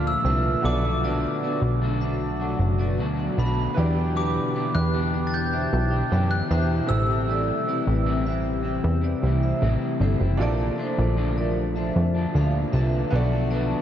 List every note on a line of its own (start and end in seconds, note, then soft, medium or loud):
0.00 0.17 D2 medium
0.00 0.24 A#2 medium
0.00 0.61 A#2 medium
0.00 6.85 D3 medium
0.00 0.24 F3 medium
0.00 0.61 F3 medium
0.00 0.25 A3 medium
0.00 0.25 D4 medium
0.00 0.59 D4 medium
0.00 0.60 F4 medium
0.00 0.61 F4 loud
0.00 0.61 A4 medium
0.00 0.62 D5 medium
0.07 0.67 E6 medium
0.25 0.56 C2 loud
0.25 0.63 A#2 medium
0.25 0.64 F3 medium
0.25 0.63 A3 medium
0.25 0.64 D4 medium
0.25 0.81 B4 medium
0.25 0.80 E5 medium
0.61 1.27 B1 loud
0.61 0.83 B2 medium
0.61 6.85 B2 medium
0.61 3.73 F#3 medium
0.61 0.84 A3 medium
0.61 3.71 B3 medium
0.61 0.83 D4 medium
0.61 3.72 F#4 medium
0.61 3.73 F#4 medium
0.61 3.73 A4 medium
0.65 0.82 F#4 medium
0.65 3.74 D5 medium
0.65 2.95 D6 medium
0.83 1.03 A3 soft
0.83 1.03 D4 soft
0.83 1.03 F#4 soft
1.03 1.41 B2 medium
1.03 1.42 A3 medium
1.03 1.42 D4 medium
1.03 1.43 F#4 medium
1.03 1.42 B4 medium
1.03 1.41 D5 medium
1.42 1.80 B2 soft
1.42 1.81 A3 medium
1.42 1.82 D4 medium
1.42 1.81 F#4 medium
1.42 1.80 B4 medium
1.42 1.80 D5 medium
1.62 2.56 B1 medium
1.81 2.01 B2 medium
1.81 2.01 A3 medium
1.81 2.00 D4 loud
1.81 1.99 F#4 loud
2.00 2.41 A3 medium
2.00 2.40 D4 medium
2.00 2.38 F#4 medium
2.00 2.20 C5 medium
2.00 2.20 E5 medium
2.40 2.79 A3 medium
2.40 2.78 D4 medium
2.40 2.77 F#4 medium
2.40 2.59 D5 soft
2.40 2.59 F#5 medium
2.59 3.00 F#1 medium
2.78 2.98 A3 soft
2.78 2.98 D4 medium
2.78 2.98 F#4 medium
2.78 2.98 B4 medium
2.78 2.98 D5 medium
2.98 3.30 D2 medium
2.98 3.36 B2 medium
2.98 3.36 A3 medium
2.98 3.37 D4 medium
2.98 3.37 F#4 medium
3.19 3.37 D5 soft
3.19 3.37 F#5 medium
3.37 3.69 B1 medium
3.37 3.76 B2 medium
3.37 3.76 A3 medium
3.37 3.76 D4 medium
3.37 3.77 F#4 medium
3.37 4.19 B5 medium
3.74 4.40 E2 loud
3.74 3.96 E3 medium
3.74 10.36 E3 medium
3.74 3.96 B3 medium
3.74 3.95 D4 medium
3.74 6.85 E4 medium
3.74 10.36 E4 loud
3.74 6.85 G4 medium
3.74 10.36 G4 medium
3.74 3.94 G4 medium
3.74 6.84 B4 medium
3.74 3.96 D5 medium
3.79 3.96 B4 medium
3.79 6.86 D5 medium
3.95 4.14 B3 soft
3.95 4.15 D4 soft
3.95 4.15 G4 soft
4.15 4.52 E3 medium
4.15 4.53 B3 medium
4.15 4.54 D4 medium
4.15 4.54 G4 medium
4.15 4.53 G4 medium
4.15 4.53 B4 medium
4.15 4.76 D6 medium
4.54 4.92 E3 medium
4.54 4.92 B3 medium
4.54 4.93 D4 medium
4.54 4.94 G4 medium
4.54 4.93 G4 medium
4.54 4.92 B4 medium
4.75 5.68 E2 loud
4.75 5.27 F#6 loud
4.93 5.13 E3 medium
4.93 5.13 B3 medium
4.93 5.13 D4 medium
4.93 5.12 G4 medium
5.13 5.53 B3 soft
5.13 5.52 D4 soft
5.13 5.51 G4 medium
5.13 5.33 B4 medium
5.13 5.32 D5 medium
5.27 5.33 A6 medium
5.34 6.34 G6 medium
5.52 5.90 D4 soft
5.52 5.89 G4 soft
5.52 5.90 C5 medium
5.52 5.90 E5 medium
5.73 6.04 B1 loud
5.91 6.10 B3 soft
5.91 6.11 D4 medium
5.91 6.11 G4 soft
6.10 6.43 F#2 medium
6.10 6.48 E3 medium
6.10 6.50 B3 medium
6.10 6.49 D4 medium
6.10 6.50 G4 medium
6.10 6.30 E5 medium
6.10 6.30 G5 medium
6.31 6.91 F#6 loud
6.49 6.82 E2 loud
6.49 6.89 E3 medium
6.49 6.89 D4 medium
6.49 6.90 G4 medium
6.49 7.06 C5 medium
6.49 7.06 E5 medium
6.86 7.52 A1 loud
6.86 7.08 A2 medium
6.86 10.36 C3 medium
6.86 7.09 G3 medium
6.86 9.96 C4 medium
6.86 7.08 C4 medium
6.86 9.96 G4 medium
6.86 9.97 A4 medium
6.86 9.19 E6 medium
6.91 7.07 E4 medium
6.91 9.98 E5 medium
7.08 7.26 G3 soft
7.08 7.27 C4 soft
7.08 7.27 E4 soft
7.27 7.64 A2 medium
7.27 7.65 G3 medium
7.27 7.66 C4 medium
7.27 7.67 E4 medium
7.27 7.66 D5 medium
7.31 7.67 A4 medium
7.65 8.04 A2 soft
7.65 8.05 G3 medium
7.65 8.05 C4 medium
7.65 8.06 E4 medium
7.65 8.05 B4 medium
7.65 8.05 D5 medium
7.87 8.80 A1 loud
8.05 8.25 A2 medium
8.05 8.25 G3 medium
8.05 8.24 C4 loud
8.05 8.24 E4 loud
8.25 8.64 G3 medium
8.25 8.63 C4 medium
8.25 8.62 E4 medium
8.25 8.45 C5 medium
8.25 8.45 E5 medium
8.63 9.02 G3 soft
8.63 9.01 C4 medium
8.63 9.00 E4 medium
8.63 8.84 E5 soft
8.63 8.83 G5 medium
8.84 9.15 E2 loud
9.01 9.21 G3 medium
9.01 9.22 C4 medium
9.01 9.22 E4 medium
9.01 9.22 B4 medium
9.01 9.22 D5 medium
9.22 9.54 C2 medium
9.22 9.60 A2 medium
9.22 9.60 G3 medium
9.22 9.61 C4 medium
9.22 9.61 E4 medium
9.43 9.62 C5 medium
9.43 9.61 E5 medium
9.61 9.78 A1 medium
9.61 9.98 A2 medium
9.61 9.99 G3 medium
9.61 10.00 C4 loud
9.61 10.00 E4 medium
9.99 10.16 G1 loud
9.99 10.20 A2 medium
9.99 10.20 G3 medium
9.99 10.19 C4 medium
9.99 10.18 E4 medium
9.99 10.21 A4 medium
9.99 10.20 C5 medium
10.19 10.41 F#1 medium
10.19 10.39 G3 soft
10.19 10.40 C4 soft
10.19 10.39 E4 medium
10.37 10.71 A#1 loud
10.37 10.77 A#2 medium
10.37 13.10 A#2 medium
10.37 13.82 D3 medium
10.37 10.77 F3 medium
10.37 13.10 F3 medium
10.37 13.08 D4 medium
10.37 10.78 D4 medium
10.37 13.08 F4 medium
10.37 13.10 F4 medium
10.37 13.09 A4 medium
10.37 10.78 A#4 medium
10.37 10.78 D5 loud
10.42 13.10 D5 medium
10.78 11.15 A#2 medium
10.78 11.16 F3 medium
10.78 11.16 A3 medium
10.78 11.17 D4 medium
10.78 11.17 A4 medium
10.78 11.17 C5 medium
10.98 11.92 A#1 loud
11.17 11.37 A#2 medium
11.17 11.37 F3 medium
11.17 11.36 A3 loud
11.17 11.34 D4 loud
11.35 11.76 F3 medium
11.35 11.75 A3 medium
11.35 11.74 D4 medium
11.35 11.57 A#4 medium
11.35 11.56 D5 medium
11.75 12.15 F3 soft
11.75 12.14 A3 soft
11.75 12.13 D4 medium
11.75 12.14 C5 medium
11.75 12.13 E5 medium
11.96 12.27 F2 medium
12.14 12.33 F3 soft
12.14 12.34 A3 medium
12.14 12.34 D4 medium
12.33 12.66 D2 medium
12.33 12.71 A#2 medium
12.33 12.71 F3 medium
12.33 12.72 A3 medium
12.33 12.73 D4 medium
12.33 12.54 D5 medium
12.33 12.54 F5 medium
12.72 13.05 C2 medium
12.72 13.12 A#2 medium
12.72 13.12 F3 medium
12.72 13.12 A3 loud
12.72 13.12 D4 loud
12.72 13.29 B4 medium
12.72 13.28 E5 medium
13.10 13.75 B1 loud
13.10 13.32 B2 medium
13.10 13.82 F#3 medium
13.10 13.32 A3 medium
13.10 13.82 B3 medium
13.10 13.32 D4 medium
13.10 13.82 F#4 medium
13.10 13.82 F#4 loud
13.10 13.30 F#4 medium
13.10 13.82 A4 medium
13.15 13.82 D5 medium
13.32 13.50 A3 soft
13.32 13.50 D4 soft
13.32 13.51 F#4 medium
13.50 13.82 B2 medium
13.50 13.82 A3 medium
13.50 13.82 D4 loud
13.50 13.82 F#4 loud
13.50 13.82 B4 medium
13.50 13.82 D5 medium